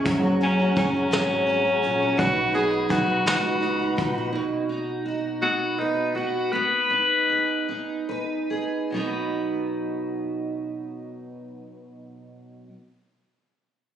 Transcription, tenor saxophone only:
X:1
M:6/8
L:1/8
Q:3/8=53
K:B
V:1 name="Tenor saxophone"
z C C4 | F G F F2 z | z3 F D F | B4 z2 |
z6 | z6 |]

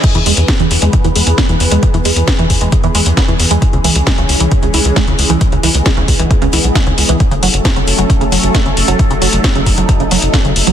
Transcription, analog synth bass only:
X:1
M:4/4
L:1/16
Q:1/4=134
K:E
V:1 name="Analog synth bass" clef=bass
z E,, E,, E,, z E,, E,, E,, z E,, E,, E,, z E,, E,, E,, | z E,, E,, E,, z E,, E,, E,, z E,, E,, E,, z E,, E,, E,, | z C,, C,, C,, z C,, C,, C,, z C,, C,, C,, z C,, C,, C,, | z C,, C,, C,, z C,, C,, C,, z C,, C,, B,,, z C,, C,, C,, |
z F,,, F,,, F,,, z F,,, F,,, F,,, z F,,, F,,, F,,, z F,,, F,,, F,,, | z F,,, F,,, F,,, z F,,, F,,, F,,, z F,,, F,,, F,,, z F,,, F,,, F,,, |]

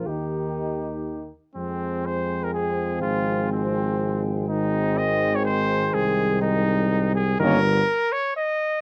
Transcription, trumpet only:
X:1
M:3/4
L:1/16
Q:1/4=123
K:Eb
V:1 name="Trumpet"
G8- G2 z2 | [K:Fm] C4 c3 B A4 | F4 C6 z2 | E4 e3 d c4 |
A4 E6 A2 | [K:Ebmix] B6 d2 e4 |]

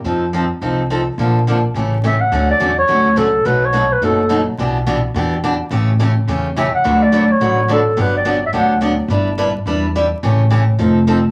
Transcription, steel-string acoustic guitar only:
X:1
M:4/4
L:1/8
Q:"Swing" 1/4=212
K:Fmix
V:1 name="Steel-string acoustic guitar"
[F,CEA] z [F,CEA] z [F,CEA] z [F,CEA] z | [D,F,B,DA] z [D,F,B,DA] z [^C,=E,A,^CG] z [C,E,A,CG] z | [K:D] [D,F,A,CF] z [D,F,A,CF] z [D,F,A,CF] z [D,F,A,CF] z | [B,,F,A,^DF] z [B,,F,A,DF] z [B,,F,A,DF] z [B,,F,A,DF] z |
[B,,E,B,DG] z [B,,E,B,DG] z [B,,E,B,DG] z [B,,E,B,DG] z | [C,E,A,CG] z [C,E,A,CG] z [C,E,A,CG] z [C,E,A,CG] z | [D,F,A,DFB] z [D,F,A,DFB] z [D,F,A,DFB] z [D,F,A,DFB] z | [D,F,B,DG] z [D,F,B,DG] z [D,F,B,DG] z [D,F,B,DG] z |
[G,DEB] z [G,DEB] z [G,DEB] z [G,DEB] z | [C,E,A,CG] z [C,E,A,CG] z [=F,=C_EA] z [F,CEA] z |]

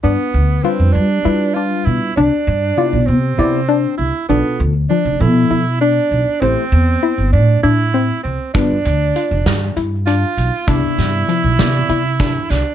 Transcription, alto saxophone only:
X:1
M:7/8
L:1/8
Q:1/4=99
K:Gmix
V:1 name="Alto saxophone"
B,2 C D2 F E | D3 C3 E | B, z D E2 D2 | C3 D E2 C |
D4 z F2 | E6 D |]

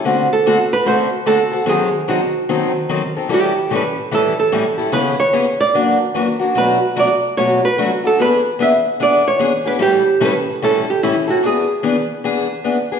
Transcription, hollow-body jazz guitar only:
X:1
M:4/4
L:1/8
Q:"Swing" 1/4=148
K:Edor
V:1 name="Hollow-body jazz guitar"
z A2 B =c2 A2 | ^G2 F4 z2 | G2 B2 A A3 | B c2 d3 z2 |
B2 d2 c B2 A | B2 e2 d c2 B | G2 B2 A G E F | ^G6 z2 |]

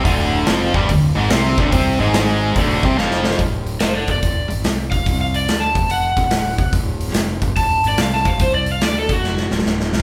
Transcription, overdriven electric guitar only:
X:1
M:4/4
L:1/8
Q:"Swing" 1/4=144
K:Clyd
V:1 name="Overdriven electric guitar" clef=bass
[D,,D,]2 [=F,,=F,] [G,,G,] D,, [_A,,_A,] [C,C] [D,,D,] | [C,C] [_A,,_A,]3 [D,,D,] [C,C] [=F,,=F,]2 | z8 | z8 |
z8 | z8 |]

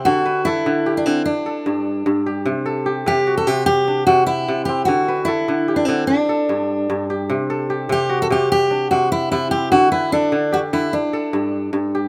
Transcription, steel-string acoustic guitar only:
X:1
M:12/8
L:1/16
Q:3/8=99
K:Clyd
V:1 name="Steel-string acoustic guitar"
F4 E4- E D C2 D8- D2 z2 | z6 G3 A G2 G4 F2 E4 G2 | F4 E4- E D C2 D8- D2 z2 | z6 G3 A G2 G4 F2 E2 E2 G2 |
F2 E2 D4 F2 E2 D8 z4 |]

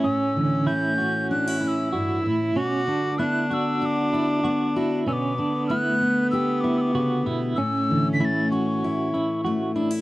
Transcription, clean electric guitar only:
X:1
M:4/4
L:1/8
Q:1/4=96
K:Amix
V:1 name="Clean electric guitar"
C D, E F2 E F E | C D E F2 E F E | C D E z2 E F E | C D, E F2 E F E |]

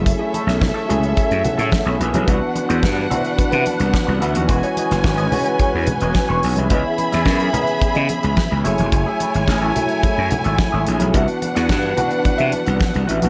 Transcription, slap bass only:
X:1
M:4/4
L:1/16
Q:1/4=108
K:F#dor
V:1 name="Slap bass" clef=bass
F,,, z2 B,,,2 z C,,2 z F,, z A,, z B,,, ^A,,, B,,, | =C,, z2 E,, =G,,2 z3 =C, z C,, z C,, =D,, ^D,, | E,,, z2 F,,, G,,,2 z3 E,, z E,,, z E,,, B,,, =C,, | C,, z2 E,, F,,2 z3 C, z C,, z C,, F,,, =F,,, |
F,,, z2 G,,, A,,,2 z3 F,, z G,,, z G,,, ^A,,, B,,, | =C,, z2 E,, =G,,2 z3 =C, z C,, z C,, A,,, ^A,,, |]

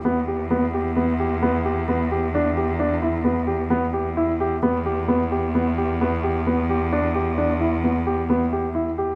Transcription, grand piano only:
X:1
M:5/4
L:1/8
Q:1/4=131
K:Em
V:1 name="Grand piano"
B, G B, G B, G B, G B, G | D G D E B, G B, G E G | B, G B, G B, G B, G B, G | D G D E B, G B, G E G |]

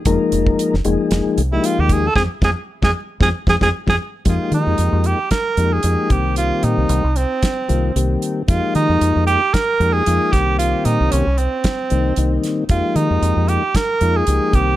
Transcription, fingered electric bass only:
X:1
M:4/4
L:1/16
Q:"Swing 16ths" 1/4=114
K:Fm
V:1 name="Fingered electric bass" clef=bass
F,,, z F,,,2 z F,,, F,,, z F,,, z C,,2 z E,,3 | F,, z F,, z2 F,, z2 F,, z F,, F,, z F,, z2 | F,, z E, F,, F,, F,,2 z3 F,,2 F,, z C,,2- | C,,2 B,, C,, C,, C,,2 z3 C,,2 C,,2 z2 |
F,, z E, F,, F,, F,,2 z3 F,,2 F,, z C,,2- | C,,2 B,, C,, C,, C,,2 z3 C,,2 C,,2 z2 | F,, z E, F,, F,, F,,2 z3 F,,2 D,, z C,,2 |]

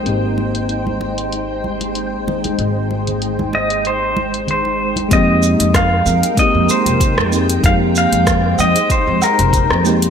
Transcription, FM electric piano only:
X:1
M:4/4
L:1/8
Q:"Swing 16ths" 1/4=95
K:Fm
V:1 name="FM electric piano"
[A,B,CEG]8- | [A,B,CEG]8 | [A,B,CEG]4 [A,B,CEG]3 [A,B,CEG] | [A,B,CEG]6- [A,B,CEG] [A,B,CEG] |]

